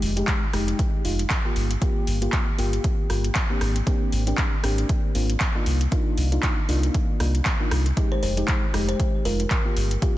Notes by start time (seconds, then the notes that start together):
Already playing: G#3 D#4 G4
0.02 F1, open hi-hat
0.16 G#3 D#4 G4, closed hi-hat
0.27 kick, clap, closed hi-hat
0.53 F1 G#3 D#4 G4, cross-stick, open hi-hat
0.68 closed hi-hat
0.79 kick, closed hi-hat
1.04 F1 G#3 D#4 F4, open hi-hat
1.19 closed hi-hat
1.30 kick, clap, closed hi-hat
1.45 A#3 F4 G4
1.56 G1, open hi-hat
1.71 closed hi-hat
1.81 A#3 F4 G4, kick, closed hi-hat
2.07 G1, open hi-hat
2.21 A#3 F4 G4, closed hi-hat
2.33 kick, clap, closed hi-hat
2.58 G1 A#3 F4 G4, open hi-hat
2.73 closed hi-hat
2.84 kick, closed hi-hat
3.09 G1 A#3 F4 G4, cross-stick, open hi-hat
3.24 closed hi-hat
3.35 kick, clap, closed hi-hat
3.50 A#3 C4 D4 G4
3.61 G#1, cross-stick, open hi-hat
3.76 closed hi-hat
3.86 A#3 C4 D4 G4, kick, closed hi-hat
4.12 G#1, open hi-hat
4.27 A#3 C4 D4 G4, closed hi-hat
4.38 kick, clap, closed hi-hat
4.63 G#1 A#3 C4 D4 G4, cross-stick, open hi-hat
4.78 closed hi-hat
4.89 kick, closed hi-hat
5.15 G#1 A#3 C4 D4 F4, open hi-hat
5.30 closed hi-hat
5.40 kick, clap, closed hi-hat
5.55 A#3 D4 D#4 F4
5.66 C2, open hi-hat
5.81 closed hi-hat
5.92 A#3 D4 D#4 F4, kick, closed hi-hat
6.18 C2, open hi-hat
6.32 A#3 D4 D#4 F4, closed hi-hat
6.43 kick, clap, closed hi-hat
6.68 C2 A#3 D4 D#4 F4, open hi-hat
6.83 closed hi-hat
6.94 kick, closed hi-hat
7.20 C2 A#3 D4 D#4 F4, cross-stick, open hi-hat
7.35 closed hi-hat
7.45 kick, clap, closed hi-hat
7.60 A#3 D4 D#4 F4
7.71 C2, cross-stick, open hi-hat
7.86 closed hi-hat
7.97 G#3 D#4 G4, kick, closed hi-hat
8.12 C5
8.23 F1 C5, open hi-hat
8.37 G#3 D#4 G4, closed hi-hat
8.48 kick, clap, closed hi-hat
8.74 F1 G#3 D#4 G4, cross-stick, open hi-hat
8.89 C5, closed hi-hat
9.00 kick, closed hi-hat
9.25 F1 G#3 D#4 F4 A#4, open hi-hat
9.40 closed hi-hat
9.51 kick, clap, closed hi-hat
9.65 A#3 F4 G4
9.76 G1, open hi-hat
9.91 closed hi-hat
10.02 A#3 F4 G4, kick, closed hi-hat